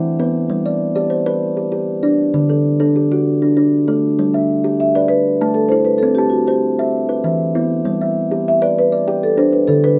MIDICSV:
0, 0, Header, 1, 3, 480
1, 0, Start_track
1, 0, Key_signature, 1, "major"
1, 0, Tempo, 306435
1, 772, Time_signature, 12, 3, 24, 8
1, 15655, End_track
2, 0, Start_track
2, 0, Title_t, "Marimba"
2, 0, Program_c, 0, 12
2, 7521, Note_on_c, 0, 76, 93
2, 7761, Note_off_c, 0, 76, 0
2, 7763, Note_on_c, 0, 74, 92
2, 7963, Note_on_c, 0, 71, 101
2, 7979, Note_off_c, 0, 74, 0
2, 8421, Note_off_c, 0, 71, 0
2, 8683, Note_on_c, 0, 69, 77
2, 8907, Note_on_c, 0, 72, 93
2, 8942, Note_off_c, 0, 69, 0
2, 9148, Note_off_c, 0, 72, 0
2, 9161, Note_on_c, 0, 71, 85
2, 9369, Note_on_c, 0, 69, 92
2, 9421, Note_off_c, 0, 71, 0
2, 9618, Note_off_c, 0, 69, 0
2, 9630, Note_on_c, 0, 67, 78
2, 9746, Note_off_c, 0, 67, 0
2, 9862, Note_on_c, 0, 66, 76
2, 10131, Note_off_c, 0, 66, 0
2, 10139, Note_on_c, 0, 67, 70
2, 10643, Note_off_c, 0, 67, 0
2, 13286, Note_on_c, 0, 76, 100
2, 13506, Note_on_c, 0, 74, 92
2, 13517, Note_off_c, 0, 76, 0
2, 13723, Note_off_c, 0, 74, 0
2, 13762, Note_on_c, 0, 71, 100
2, 14464, Note_on_c, 0, 69, 82
2, 14486, Note_off_c, 0, 71, 0
2, 14686, Note_on_c, 0, 72, 89
2, 14703, Note_off_c, 0, 69, 0
2, 14910, Note_off_c, 0, 72, 0
2, 14924, Note_on_c, 0, 71, 81
2, 15148, Note_off_c, 0, 71, 0
2, 15155, Note_on_c, 0, 69, 90
2, 15407, Note_off_c, 0, 69, 0
2, 15412, Note_on_c, 0, 71, 91
2, 15655, Note_off_c, 0, 71, 0
2, 15655, End_track
3, 0, Start_track
3, 0, Title_t, "Kalimba"
3, 0, Program_c, 1, 108
3, 0, Note_on_c, 1, 52, 75
3, 0, Note_on_c, 1, 64, 61
3, 297, Note_off_c, 1, 52, 0
3, 307, Note_on_c, 1, 59, 73
3, 309, Note_on_c, 1, 71, 58
3, 538, Note_off_c, 1, 64, 0
3, 778, Note_on_c, 1, 55, 75
3, 780, Note_off_c, 1, 59, 0
3, 1023, Note_off_c, 1, 71, 0
3, 1028, Note_on_c, 1, 74, 61
3, 1257, Note_off_c, 1, 55, 0
3, 1477, Note_off_c, 1, 74, 0
3, 1496, Note_on_c, 1, 74, 66
3, 1500, Note_on_c, 1, 67, 77
3, 1724, Note_on_c, 1, 72, 61
3, 1979, Note_off_c, 1, 67, 0
3, 1980, Note_on_c, 1, 71, 76
3, 2218, Note_off_c, 1, 74, 0
3, 2453, Note_off_c, 1, 72, 0
3, 2458, Note_on_c, 1, 67, 63
3, 2460, Note_off_c, 1, 71, 0
3, 2674, Note_off_c, 1, 67, 0
3, 2693, Note_on_c, 1, 67, 70
3, 3177, Note_on_c, 1, 62, 70
3, 3178, Note_on_c, 1, 74, 58
3, 3421, Note_off_c, 1, 67, 0
3, 3660, Note_off_c, 1, 62, 0
3, 3666, Note_on_c, 1, 50, 78
3, 3901, Note_off_c, 1, 74, 0
3, 3908, Note_on_c, 1, 69, 66
3, 4145, Note_off_c, 1, 50, 0
3, 4366, Note_off_c, 1, 69, 0
3, 4385, Note_on_c, 1, 62, 70
3, 4385, Note_on_c, 1, 69, 65
3, 4635, Note_on_c, 1, 67, 64
3, 4865, Note_off_c, 1, 62, 0
3, 4882, Note_on_c, 1, 66, 72
3, 5106, Note_off_c, 1, 69, 0
3, 5351, Note_off_c, 1, 67, 0
3, 5354, Note_off_c, 1, 66, 0
3, 5360, Note_on_c, 1, 62, 63
3, 5572, Note_off_c, 1, 62, 0
3, 5591, Note_on_c, 1, 62, 70
3, 6073, Note_on_c, 1, 69, 56
3, 6078, Note_on_c, 1, 57, 66
3, 6313, Note_off_c, 1, 62, 0
3, 6553, Note_off_c, 1, 57, 0
3, 6562, Note_on_c, 1, 55, 79
3, 6790, Note_off_c, 1, 69, 0
3, 6802, Note_on_c, 1, 76, 63
3, 7035, Note_off_c, 1, 55, 0
3, 7274, Note_on_c, 1, 67, 76
3, 7515, Note_off_c, 1, 76, 0
3, 7751, Note_off_c, 1, 67, 0
3, 7758, Note_on_c, 1, 71, 71
3, 7993, Note_off_c, 1, 71, 0
3, 8480, Note_on_c, 1, 81, 62
3, 8484, Note_on_c, 1, 57, 77
3, 8955, Note_off_c, 1, 57, 0
3, 8955, Note_on_c, 1, 64, 70
3, 8955, Note_on_c, 1, 69, 62
3, 9193, Note_off_c, 1, 81, 0
3, 9430, Note_off_c, 1, 64, 0
3, 9441, Note_on_c, 1, 60, 83
3, 9670, Note_off_c, 1, 69, 0
3, 9686, Note_on_c, 1, 81, 69
3, 9913, Note_off_c, 1, 60, 0
3, 10148, Note_on_c, 1, 72, 77
3, 10395, Note_off_c, 1, 81, 0
3, 10625, Note_off_c, 1, 72, 0
3, 10638, Note_on_c, 1, 76, 78
3, 10870, Note_off_c, 1, 76, 0
3, 11105, Note_on_c, 1, 71, 64
3, 11342, Note_on_c, 1, 52, 72
3, 11345, Note_on_c, 1, 76, 62
3, 11821, Note_off_c, 1, 52, 0
3, 11822, Note_off_c, 1, 71, 0
3, 11830, Note_on_c, 1, 64, 66
3, 11834, Note_on_c, 1, 59, 72
3, 12062, Note_off_c, 1, 76, 0
3, 12299, Note_on_c, 1, 55, 80
3, 12306, Note_off_c, 1, 59, 0
3, 12543, Note_off_c, 1, 64, 0
3, 12554, Note_on_c, 1, 76, 67
3, 12778, Note_off_c, 1, 55, 0
3, 13023, Note_on_c, 1, 67, 79
3, 13264, Note_off_c, 1, 76, 0
3, 13498, Note_off_c, 1, 67, 0
3, 13501, Note_on_c, 1, 71, 77
3, 13976, Note_off_c, 1, 71, 0
3, 13976, Note_on_c, 1, 74, 66
3, 14218, Note_on_c, 1, 79, 61
3, 14222, Note_on_c, 1, 67, 76
3, 14675, Note_off_c, 1, 67, 0
3, 14685, Note_on_c, 1, 62, 72
3, 14691, Note_off_c, 1, 74, 0
3, 14694, Note_on_c, 1, 67, 59
3, 14931, Note_off_c, 1, 79, 0
3, 15165, Note_off_c, 1, 62, 0
3, 15168, Note_on_c, 1, 50, 78
3, 15408, Note_off_c, 1, 67, 0
3, 15411, Note_on_c, 1, 71, 69
3, 15645, Note_off_c, 1, 50, 0
3, 15655, Note_off_c, 1, 71, 0
3, 15655, End_track
0, 0, End_of_file